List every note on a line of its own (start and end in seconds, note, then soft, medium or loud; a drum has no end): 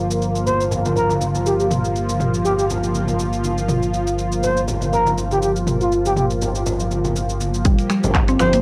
0.00 7.63 G1 medium
0.00 7.61 F3 medium
0.00 7.61 A#3 medium
0.00 7.62 F4 medium
0.11 shaker medium
0.22 shaker soft
0.35 shaker medium
0.46 0.64 C5 medium
0.46 low conga medium
0.46 shaker medium
0.61 shaker medium
0.71 low conga loud
0.71 shaker medium
0.85 high conga loud
0.85 shaker soft
0.96 1.14 A#4 medium
0.96 low conga medium
0.96 shaker soft
1.09 high conga loud
1.09 shaker soft
1.21 high conga loud
1.21 shaker loud
1.35 high conga medium
1.35 shaker soft
1.46 1.55 G4 medium
1.46 shaker medium
1.59 1.66 G4 medium
1.59 shaker soft
1.70 mid tom medium
1.70 high conga medium
1.70 shaker medium
1.85 shaker soft
1.96 shaker soft
2.09 high conga medium
2.09 shaker medium
2.20 mid tom medium
2.20 shaker soft
2.34 shaker medium
2.44 2.53 G4 medium
2.44 low conga medium
2.44 shaker medium
2.58 2.65 G4 medium
2.58 shaker soft
2.70 low conga medium
2.70 shaker medium
2.84 shaker soft
2.95 high conga medium
2.95 shaker soft
3.08 high conga medium
3.08 low conga medium
3.08 shaker soft
3.19 shaker medium
3.33 shaker soft
3.44 high conga medium
3.44 shaker medium
3.58 shaker soft
3.69 mid tom medium
3.69 shaker medium
3.83 shaker soft
3.94 shaker soft
4.07 shaker medium
4.18 shaker soft
4.32 shaker soft
4.43 4.61 C5 medium
4.43 low conga medium
4.43 shaker medium
4.57 shaker soft
4.68 low conga medium
4.68 shaker medium
4.81 high conga medium
4.81 shaker soft
4.93 5.10 A#4 medium
4.93 low conga medium
4.93 shaker soft
5.06 high conga loud
5.06 shaker soft
5.18 high conga medium
5.18 shaker medium
5.31 5.39 G4 medium
5.31 high conga medium
5.31 shaker soft
5.42 5.51 G4 medium
5.42 shaker medium
5.56 shaker soft
5.67 mid tom medium
5.67 high conga medium
5.67 shaker medium
5.80 5.97 F4 medium
5.80 shaker soft
5.92 shaker soft
6.05 6.13 G4 medium
6.05 high conga medium
6.05 shaker medium
6.16 6.25 G4 medium
6.16 mid tom medium
6.16 shaker soft
6.30 shaker medium
6.42 low conga medium
6.42 shaker medium
6.55 shaker soft
6.66 low conga loud
6.66 shaker medium
6.80 shaker medium
6.91 high conga medium
6.91 shaker soft
7.04 high conga medium
7.04 low conga loud
7.04 shaker soft
7.16 shaker medium
7.29 shaker soft
7.40 high conga medium
7.40 shaker medium
7.54 shaker soft
7.65 7.76 G1 loud
7.65 8.62 F3 medium
7.65 7.78 G3 medium
7.65 8.62 A#3 medium
7.65 8.62 G4 medium
7.65 kick loud
7.65 closed hi-hat medium
7.65 mid tom medium
7.65 shaker medium
7.79 closed hi-hat soft
7.79 shaker medium
7.90 8.03 G3 medium
7.90 finger snap loud
7.90 shaker medium
8.04 8.36 G1 medium
8.04 low conga loud
8.04 shaker medium
8.15 finger snap medium
8.15 kick loud
8.15 clap loud
8.15 closed hi-hat medium
8.15 shaker soft
8.28 8.39 C4 medium
8.28 closed hi-hat soft
8.28 shaker medium
8.39 8.62 G1 medium
8.39 8.52 F3 loud
8.39 8.57 C5 medium
8.39 finger snap loud
8.39 low conga loud
8.39 shaker medium
8.53 8.62 A#3 medium
8.53 closed hi-hat soft
8.53 shaker medium